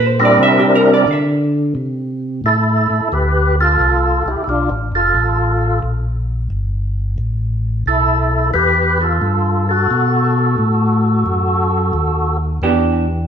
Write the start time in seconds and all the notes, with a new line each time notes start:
Already playing: A#2
0.07 C5
0.19 G3 C4 D4 E4 A#4
0.25 D5
0.39 C3 E5
0.60 G4
0.75 A#4
0.94 D5
1.08 D3 E5
1.75 C3
2.44 A2 E4 A4
2.90 A2
3.12 D2 G4 B4
3.60 F4 A4
3.79 C2
4.26 C2 E4 G4
4.44 B1 E4
4.49 D4 F4
4.70 A1
4.92 F1 F4 A4
5.14 A1
5.83 A#1
6.50 G1
7.18 A1
7.86 B1 E4 A4
8.54 E2 G4 B4
9.01 F4 A4
9.22 G2
9.69 F#4 A4
9.91 B2
10.58 A2
11.26 F#2
11.93 D#2
12.62 E2 E3 B3 D4 G4